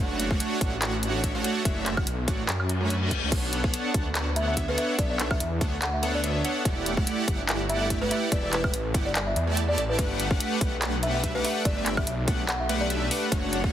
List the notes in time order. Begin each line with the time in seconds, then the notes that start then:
0.00 F#1 A3 D4 F#4 C#5 F#5
0.20 closed hi-hat
0.31 A3 D4 F#4 C#5 F#5, kick
0.40 closed hi-hat
0.61 A1 D4 F#4 C#5 F#5, kick, closed hi-hat
0.82 clap, closed hi-hat
1.03 closed hi-hat
1.24 A3 D4 F#4 C#5 E5, kick, closed hi-hat
1.35 A3 D4 F#4 C#5 F#5
1.44 closed hi-hat
1.65 F#1 A3 D4 F#4 E5, kick, closed hi-hat
1.86 clap, closed hi-hat
1.97 A3 D4 F#4 C#5 F#5, kick, high woodblock
2.07 B1, closed hi-hat
2.28 A1 A3 D4 F#4 C#5 F#5, kick, closed hi-hat
2.49 F#2, clap, closed hi-hat, reverse cymbal
2.60 high woodblock
2.69 closed hi-hat
2.81 A3 D4 F#4 C#5 B5
2.90 closed hi-hat
3.11 kick, closed hi-hat
3.22 C#2
3.32 B1 B3 D4 A4 C#5 F#5, kick, closed hi-hat, crash
3.53 closed hi-hat
3.64 B3 D4 A4 C#5 F#5, kick
3.74 closed hi-hat
3.94 D2 D4 C#5, kick, closed hi-hat
4.15 clap, closed hi-hat
4.36 E5, closed hi-hat
4.48 E5
4.57 B3 A4 C#5 E5, kick, closed hi-hat
4.68 B3 D4 A4 B4 C#5 F#5
4.78 E5, closed hi-hat
4.98 B1 B3 D4 D5, kick, closed hi-hat
5.10 D5
5.20 clap, closed hi-hat
5.30 B3 C#5 E5 F#5, kick, high woodblock
5.40 E2 E5, closed hi-hat
5.61 D2 B3 D4 A4 C#5 F#5, kick, closed hi-hat
5.82 F#5, clap, closed hi-hat
5.94 E5
6.03 B3 D4 A4 C#5 E5 F#5, closed hi-hat
6.14 D5
6.24 B3 D4 A4 C#5 E5, closed hi-hat
6.44 B3 D4 A4 C#5 F#5, closed hi-hat
6.65 E1 E4, kick, closed hi-hat
6.86 closed hi-hat
6.97 A3 E4 G4 D5 F#5, kick
7.07 closed hi-hat
7.28 G1, kick, closed hi-hat
7.49 clap, closed hi-hat
7.70 E5, closed hi-hat
7.81 E5
7.90 A3 E4 G4 D5 E5, kick, closed hi-hat
8.01 A3 E4 G4 B4 D5 F#5
8.11 E5, closed hi-hat
8.32 E1 A3 E4 D5 E5, kick, closed hi-hat
8.43 D5
8.53 B4, clap, closed hi-hat
8.64 A3 E4 G4 D5 F#5, kick, high woodblock
8.74 A1, closed hi-hat
8.94 G1 A3 E4 G4 D5 F#5, kick, closed hi-hat
9.06 D5
9.15 D5, clap, closed hi-hat
9.27 E5
9.36 E2 E5, closed hi-hat
9.47 A3 E4 G4 D5 A5
9.57 closed hi-hat
9.69 D5
9.78 A1 D5, closed hi-hat
9.89 B4
9.99 G1 A3 D4 G4 B4 F#5, kick, closed hi-hat
10.20 closed hi-hat
10.31 A3 D4 G4 B4 F#5, kick
10.40 closed hi-hat
10.61 B1 G4 B4 F#5, kick, closed hi-hat
10.82 clap, closed hi-hat
11.03 E5, closed hi-hat
11.14 E5
11.24 A3 D4 G4 B4 E5, kick, closed hi-hat
11.35 A3 D4 G4 B4 F#5
11.44 E5, open hi-hat
11.65 G1 A3 D4 G4 B4 D5 E5, kick, closed hi-hat
11.77 D5
11.86 clap, closed hi-hat
11.97 A3 D4 G4 B4 E5 F#5, kick, high woodblock
12.07 B1 E5, closed hi-hat
12.28 B1 A3 D4 G4 B4 F#5, kick, closed hi-hat
12.49 F#5, clap, closed hi-hat
12.60 E5
12.69 A3 D4 G4 B4 E5 F#5, closed hi-hat
12.81 D5
12.90 A3 D4 G4 B4 E5, closed hi-hat
13.11 A3 D4 G4 B4 F#5, open hi-hat
13.32 F#1 A3 D4 F#4 C#5 F#5, kick, closed hi-hat
13.53 closed hi-hat
13.64 A3 D4 C#5 F#5, kick